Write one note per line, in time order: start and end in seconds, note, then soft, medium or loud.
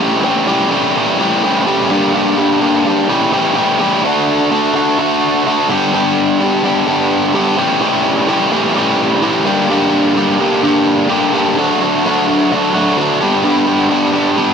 0.00 0.22 A2 medium
0.00 0.22 E3 medium
0.00 0.23 G3 medium
0.00 0.23 C#4 medium
0.00 0.24 G4 medium
0.23 0.44 A2 medium
0.23 0.45 E3 medium
0.23 0.46 G3 loud
0.23 0.46 C#4 loud
0.23 0.47 G4 medium
0.46 0.69 A2 medium
0.46 0.69 E3 medium
0.46 0.71 G3 medium
0.46 0.71 C#4 medium
0.46 0.71 G4 medium
0.70 0.94 A2 medium
0.70 0.94 E3 medium
0.70 0.95 G3 medium
0.70 0.95 C#4 medium
0.70 0.96 G4 medium
0.95 1.18 A2 medium
0.95 1.18 E3 medium
0.95 1.19 G3 medium
0.95 1.19 C#4 medium
0.95 1.20 G4 medium
1.19 1.42 A2 medium
1.19 1.42 E3 medium
1.19 1.42 G3 medium
1.19 1.43 C#4 medium
1.19 1.43 G4 medium
1.43 1.65 A2 medium
1.43 1.65 E3 medium
1.43 1.65 G3 medium
1.43 1.65 C#4 medium
1.43 1.66 G4 medium
1.66 1.89 A2 medium
1.66 1.89 E3 medium
1.66 1.89 G3 medium
1.66 1.89 C#4 medium
1.66 1.89 G4 medium
1.90 2.11 G2 medium
1.90 2.13 D3 medium
1.90 2.13 G3 loud
1.90 2.13 A#3 loud
1.90 2.13 D4 medium
1.90 2.14 G4 loud
2.13 2.36 G2 loud
2.13 2.37 D3 loud
2.13 2.38 G3 medium
2.13 2.38 A#3 loud
2.13 2.38 D4 medium
2.13 2.38 G4 loud
2.37 2.59 G2 medium
2.37 2.59 D3 medium
2.37 2.59 G3 medium
2.37 2.59 A#3 medium
2.37 2.60 D4 medium
2.37 2.61 G4 medium
2.60 2.84 G2 medium
2.60 2.84 D3 medium
2.60 2.85 G3 medium
2.60 2.85 A#3 medium
2.60 2.85 D4 medium
2.60 2.86 G4 medium
2.85 3.08 G2 medium
2.85 3.08 D3 medium
2.85 3.08 G3 medium
2.85 3.09 A#3 medium
2.85 3.09 D4 medium
2.85 3.09 G4 medium
3.08 3.31 A2 medium
3.08 3.31 E3 medium
3.08 3.31 G3 medium
3.08 3.32 C#4 medium
3.08 3.32 G4 medium
3.32 3.54 A2 medium
3.32 3.55 E3 medium
3.32 3.55 G3 medium
3.32 3.56 C#4 medium
3.32 3.55 G4 medium
3.55 3.78 A2 medium
3.55 3.79 E3 medium
3.55 3.79 G3 medium
3.55 3.80 C#4 medium
3.55 3.80 G4 medium
3.79 4.02 A2 medium
3.79 4.03 E3 medium
3.79 4.03 G3 medium
3.79 4.03 C#4 medium
3.79 4.03 G4 medium
4.03 4.49 D3 medium
4.03 4.50 A3 medium
4.03 4.51 D4 loud
4.03 4.51 F#4 medium
4.51 4.73 D3 medium
4.51 4.73 A3 medium
4.51 4.75 D4 medium
4.51 4.74 F#4 loud
4.74 4.98 D3 medium
4.74 4.98 A3 medium
4.74 4.99 D4 medium
4.74 4.99 F#4 medium
4.99 5.45 D3 medium
4.99 5.45 A3 medium
4.99 5.46 D4 medium
4.99 5.47 F#4 loud
5.47 5.69 D3 medium
5.47 5.69 A3 medium
5.47 5.70 D4 medium
5.47 5.69 F#4 loud
5.68 5.91 G2 loud
5.68 5.92 D3 loud
5.68 5.93 G3 loud
5.68 5.92 B3 medium
5.68 5.94 D4 loud
5.68 5.94 G4 loud
5.93 6.39 G2 medium
5.93 6.39 D3 medium
5.93 6.40 G3 medium
5.93 6.40 B3 medium
5.93 6.40 D4 loud
5.93 6.42 G4 loud
6.40 6.62 G2 medium
6.40 6.62 D3 medium
6.40 6.63 G3 medium
6.40 6.62 B3 medium
6.40 6.64 D4 medium
6.40 6.64 G4 medium
6.63 6.85 G2 medium
6.63 6.85 D3 medium
6.63 6.87 G3 medium
6.63 6.86 B3 medium
6.63 6.88 D4 medium
6.63 6.88 G4 medium
6.86 7.32 G2 medium
6.86 7.33 D3 medium
6.86 7.34 G3 loud
6.86 7.34 B3 loud
6.86 7.35 D4 loud
6.86 7.35 G4 loud
7.33 7.56 G2 medium
7.33 7.57 D3 medium
7.33 7.58 G3 medium
7.33 7.57 B3 medium
7.33 7.59 D4 medium
7.33 7.59 G4 loud
7.57 7.80 A2 medium
7.57 7.80 E3 loud
7.57 7.81 G3 loud
7.57 7.81 C#4 loud
7.57 7.82 G4 loud
7.81 8.26 A2 loud
7.81 8.27 E3 loud
7.81 8.28 G3 loud
7.81 8.28 C#4 loud
7.81 8.29 G4 loud
8.27 8.50 A2 medium
8.27 8.50 E3 medium
8.27 8.52 G3 medium
8.27 8.52 C#4 loud
8.27 8.53 G4 loud
8.51 8.73 A2 medium
8.51 8.73 E3 medium
8.51 8.74 G3 medium
8.51 8.74 C#4 medium
8.51 8.75 G4 medium
8.74 9.20 A2 loud
8.74 9.21 E3 medium
8.74 9.21 G3 medium
8.74 9.21 C#4 loud
8.74 9.22 G4 loud
9.21 9.44 A2 medium
9.21 9.45 E3 medium
9.21 9.44 G3 medium
9.21 9.45 C#4 loud
9.21 9.45 G4 medium
9.44 9.68 G2 loud
9.44 9.68 D3 loud
9.44 9.68 G3 loud
9.44 9.70 A#3 loud
9.44 9.70 D4 loud
9.44 9.70 G4 loud
9.69 10.14 G2 medium
9.69 10.14 D3 medium
9.69 10.15 G3 loud
9.69 10.16 A#3 loud
9.69 10.16 D4 loud
9.69 10.16 G4 loud
10.15 10.38 G2 loud
10.15 10.39 D3 medium
10.15 10.39 G3 medium
10.15 10.39 A#3 medium
10.15 10.40 D4 medium
10.15 10.40 G4 medium
10.40 10.62 G2 medium
10.40 10.62 D3 medium
10.40 10.62 G3 medium
10.40 10.63 A#3 medium
10.40 10.63 D4 medium
10.40 10.63 G4 medium
10.63 11.07 G2 loud
10.63 11.08 D3 loud
10.63 11.08 G3 loud
10.63 11.09 A#3 medium
10.63 11.09 D4 loud
10.63 11.09 G4 loud
11.09 11.32 G2 medium
11.09 11.32 D3 medium
11.09 11.33 G3 medium
11.09 11.33 A#3 medium
11.09 11.33 D4 medium
11.09 11.33 G4 medium
11.33 11.55 G2 medium
11.33 11.55 D3 medium
11.33 11.56 G3 medium
11.33 11.56 A#3 medium
11.33 11.56 D4 medium
11.33 11.56 G4 medium
11.56 12.03 D3 medium
11.56 12.05 F#3 medium
11.56 11.82 A3 loud
11.56 11.82 D4 loud
11.56 11.80 F#4 loud
11.81 12.04 A3 medium
11.81 12.06 D4 medium
11.81 12.07 F#4 medium
12.05 12.51 D3 loud
12.05 12.49 F#3 medium
12.05 12.29 A3 medium
12.05 12.28 D4 medium
12.05 12.26 F#4 medium
12.27 12.51 A3 medium
12.27 12.52 D4 medium
12.27 12.51 F#4 medium
12.51 12.96 F#3 medium
12.51 12.76 A3 medium
12.51 12.74 D4 medium
12.51 12.73 F#4 medium
12.74 12.98 A3 medium
12.74 12.98 D4 medium
12.74 12.98 F#4 medium
12.97 13.19 D3 medium
12.97 13.19 F#3 medium
12.97 13.20 A3 medium
12.97 13.20 D4 medium
12.97 13.20 F#4 loud
13.20 13.41 G2 medium
13.20 13.42 D3 medium
13.20 13.44 G3 medium
13.20 13.43 B3 medium
13.20 13.44 D4 medium
13.20 13.45 G4 loud
13.42 13.87 G2 loud
13.42 13.88 D3 medium
13.42 13.68 G3 loud
13.42 13.67 B3 loud
13.42 13.67 D4 loud
13.42 13.66 G4 loud
13.66 13.89 G3 medium
13.66 13.89 B3 medium
13.66 13.90 D4 medium
13.66 13.91 G4 medium
13.88 14.36 G2 medium
13.88 14.36 D3 loud
13.88 14.15 G3 medium
13.88 14.13 B3 loud
13.88 14.14 D4 loud
13.88 14.12 G4 loud
14.13 14.36 G3 medium
14.13 14.37 B3 medium
14.13 14.38 D4 medium
14.13 14.39 G4 medium
14.36 14.54 G3 medium
14.36 14.54 B3 medium
14.36 14.54 D4 medium
14.36 14.54 G4 medium